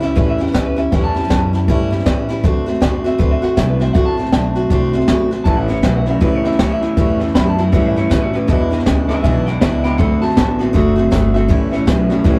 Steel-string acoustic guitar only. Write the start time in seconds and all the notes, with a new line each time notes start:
0.00 G3 C#4 E4
0.15 A2 E3 G3 C#4 E4
0.38 G3 C#4 E4
0.52 E3 G3 C#4 E4
0.76 G3 C#4 E4
0.92 A2 E3 G3 C#4 E4
1.15 G3 C#4 E4
1.28 E3 G3 C#4 E4
1.53 G3 C#4 E4
1.68 A2 E3 G3 C#4 E4
1.91 G3 C#4 E4
2.06 E3 G3 C#4 E4
2.29 G3 C#4 E4
2.44 D3 A3 C4 F#4
2.66 A3 C4 F#4
2.81 D3 A3 C4 F#4
3.04 A3 C4 F#4
3.18 D3 A3 C4 F#4
3.42 A3 C4 F#4
3.57 D3 A3 C4 F#4
3.80 A3 C4 F#4
3.94 D3 A3 C4 F#4
4.17 A3 C4 F#4
4.32 D3 A3 C4 F#4
4.56 A3 C4 F#4
4.70 D3 A3 C4 F#4
4.93 A3 C4 F#4
5.08 D3 A3 C4 F#4
5.31 A3 C4 F#4
5.45 A2 E3 G3 C#4 E4
5.68 G3 C#4 E4
5.82 E3 G3 C#4 E4
6.06 G3 C#4 E4
6.21 A2 E3 G3 C#4 E4
6.45 G3 C#4 E4
6.59 E3 G3 C#4 E4
6.83 G3 C#4 E4
6.97 A2 E3 G3 C#4 E4
7.20 G3 C#4 E4
7.35 E3 G3 C#4 E4
7.58 G3 C#4 E4
7.72 A2 E3 G3 C#4 E4
7.96 G3 C#4 E4
8.10 E3 G3 C#4 E4
8.33 G3 C#4 E4
8.47 E2 B2 E3 G#3 D4 E4
8.70 E3 G#3 D4 E4
8.86 E3 G#3 D4 E4
9.09 E3 G#3 D4 E4
9.24 E2 B2 E3 G#3 D4 E4
9.47 E3 G#3 D4 E4
9.61 E3 G#3 D4 E4
9.84 E3 G#3 D4 E4
9.98 D3 A3 C4 F#4
10.22 A3 C4 F#4
10.35 D3 A3 C4 F#4
10.59 A3 C4 F#4
10.73 D3 A3 C4 F#4
10.96 A3 C4 F#4
11.11 D3 A3 C4 F#4
11.34 A3 C4 F#4
11.48 A2 E3 G3 C#4 E4
11.71 G3 C#4 E4
11.86 E3 G3 C#4 E4
12.10 G3 C#4 E4
12.24 A2 E3 G3 C#4 E4